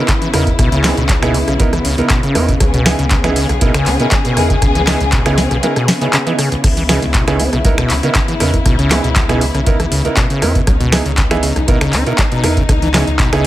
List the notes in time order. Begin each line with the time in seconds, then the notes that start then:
Already playing: C#3 B3 E4
0.08 C#3, kick, cross-stick, clap, closed hi-hat
0.22 E3, closed hi-hat
0.33 E2 C#3 B3 D#4 E4 A#4, cross-stick, open hi-hat
0.47 C#2, kick, closed hi-hat
0.59 C#2 B2, kick, cross-stick, closed hi-hat
0.72 C#3, closed hi-hat
0.84 B3 C#4 D#4 E4 G#4, finger snap, cross-stick, snare, clap, open hi-hat
0.97 C#2 B2, closed hi-hat
1.09 F#3, kick, clap, closed hi-hat
1.22 B2 B3 D#4 E4 G#4, finger snap, cross-stick, closed hi-hat
1.34 C#3, open hi-hat
1.48 B1 C#3, cross-stick, closed hi-hat
1.59 C#2 C#3 B3 D#4 E4 A#4, kick, closed hi-hat
1.73 E3, cross-stick, closed hi-hat
1.85 C#2 C#3, open hi-hat
1.98 C#2 B3 D#4 E4 A#4, closed hi-hat
2.10 B2, kick, cross-stick, clap, closed hi-hat
2.23 C#3, closed hi-hat
2.35 E2 B3 C#4 D#4 E4 A#4, cross-stick, open hi-hat
2.49 B2, kick, closed hi-hat
2.60 C#2 F#3 G#4, kick, cross-stick, closed hi-hat
2.74 B2, closed hi-hat
2.86 C#3 B3 D#4 E4 G#4, finger snap, cross-stick, snare, open hi-hat
2.99 C#2 C#3, closed hi-hat
3.11 C#3, kick, clap, closed hi-hat
3.24 E3 B3 D#4 E4 G#4, finger snap, cross-stick, closed hi-hat
3.36 C#3, open hi-hat
3.49 B1 C#2, cross-stick, closed hi-hat
3.61 C#2 B2 B3 D#4 E4 A#4, kick, closed hi-hat
3.74 C#3, finger snap, cross-stick, closed hi-hat
3.86 C#2 C#4, clap, open hi-hat
4.00 B2 B3 D#4 E4 A#4, closed hi-hat
4.12 F#3, kick, cross-stick, clap, closed hi-hat
4.25 B2, closed hi-hat
4.37 E2 C#3 B3 D#4 E4 A#4, cross-stick, open hi-hat
4.50 C#3, kick, closed hi-hat
4.62 C#2 C#3, kick, cross-stick, closed hi-hat
4.75 E3, closed hi-hat
4.87 C#3 B3 D#4 E4 G#4, finger snap, cross-stick, snare, clap, open hi-hat
5.00 C#2, closed hi-hat
5.12 B2, kick, clap, closed hi-hat
5.26 C#3 B3 D#4 E4 G#4, finger snap, cross-stick, closed hi-hat
5.38 C#4, snare, open hi-hat
5.51 B1 B2, cross-stick, closed hi-hat
5.63 F#3 B3 D#4 E4 A#4, closed hi-hat
5.76 B2, cross-stick, closed hi-hat
5.88 C#3, snare, open hi-hat
6.01 C#3 B3 D#4 E4 G#4, closed hi-hat
6.13 C#3, cross-stick, clap, closed hi-hat
6.27 E3 B3 D#4 E4 G#4, closed hi-hat
6.39 C#3, cross-stick, open hi-hat
6.52 C#2, closed hi-hat
6.64 C#2 C#3 E4, kick, cross-stick, closed hi-hat, crash
6.77 E3, closed hi-hat
6.89 C#3 B3 D#4 E4 G#4, finger snap, cross-stick, snare, open hi-hat
7.02 C#2, closed hi-hat
7.14 B2, kick, clap, closed hi-hat
7.27 C#3 B3 D#4 E4 G#4, finger snap, cross-stick, closed hi-hat
7.39 C#4, open hi-hat
7.53 B1 B2, cross-stick, closed hi-hat
7.65 C#2 F#3 B3 D#4 E4 A#4, kick, closed hi-hat
7.78 B2, finger snap, cross-stick, closed hi-hat
7.90 C#2 C#3, clap, open hi-hat
8.03 C#3 B3 D#4 E4 A#4, closed hi-hat
8.15 C#3, kick, cross-stick, clap, closed hi-hat
8.28 E3, closed hi-hat
8.40 E2 C#3 B3 D#4 E4 A#4, cross-stick, open hi-hat
8.54 C#2, kick, closed hi-hat
8.65 C#2 B2, kick, cross-stick, closed hi-hat
8.79 C#3, closed hi-hat
8.91 B3 C#4 D#4 E4 G#4, finger snap, cross-stick, snare, clap, open hi-hat
9.04 C#2 B2, closed hi-hat
9.16 F#3, kick, clap, closed hi-hat
9.29 B2 B3 D#4 E4 G#4, finger snap, cross-stick, closed hi-hat
9.41 C#3, open hi-hat
9.54 B1 C#3, cross-stick, closed hi-hat
9.66 C#2 C#3 B3 D#4 E4 A#4, kick, closed hi-hat
9.80 E3, cross-stick, closed hi-hat
9.91 C#2 C#3, open hi-hat
10.05 C#2 B3 D#4 E4 A#4, closed hi-hat
10.17 B2, kick, cross-stick, clap, closed hi-hat
10.30 C#3, closed hi-hat
10.42 E2 B3 C#4 D#4 E4 A#4, cross-stick, open hi-hat
10.55 B2, kick, closed hi-hat
10.67 C#2 F#3 D#4, kick, cross-stick, closed hi-hat
10.80 B2, closed hi-hat
10.92 C#3 B3 D#4 E4 G#4, finger snap, cross-stick, snare, open hi-hat
11.06 C#2 C#3, closed hi-hat
11.18 C#3, kick, clap, closed hi-hat
11.31 E3 B3 D#4 E4 G#4, finger snap, cross-stick, closed hi-hat
11.43 C#3, open hi-hat
11.56 B1 C#2, cross-stick, closed hi-hat
11.68 C#2 B2 B3 D#4 E4 A#4, kick, closed hi-hat
11.81 C#3, finger snap, cross-stick, closed hi-hat
11.93 C#2 C#4, clap, open hi-hat
12.06 B2 B3 D#4 E4 A#4, closed hi-hat
12.18 F#3, kick, cross-stick, clap, closed hi-hat
12.32 B2, closed hi-hat
12.44 E2 C#3 B3 D#4 E4 A#4, cross-stick, open hi-hat
12.57 C#3, kick, closed hi-hat
12.69 C#2 C#3, kick, cross-stick, closed hi-hat
12.82 E3, closed hi-hat
12.94 C#3 B3 D#4 E4 G#4, finger snap, cross-stick, snare, clap, open hi-hat
13.07 C#2, closed hi-hat
13.19 B2, kick, clap, closed hi-hat
13.33 C#3 B3 D#4 E4 G#4, finger snap, cross-stick, closed hi-hat